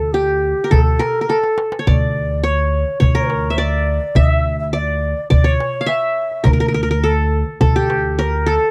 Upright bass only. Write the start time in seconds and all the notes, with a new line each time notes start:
Already playing: D2
0.72 D2
1.87 D2
3.02 D2
4.16 D2
5.32 D2
6.46 D2
7.61 D2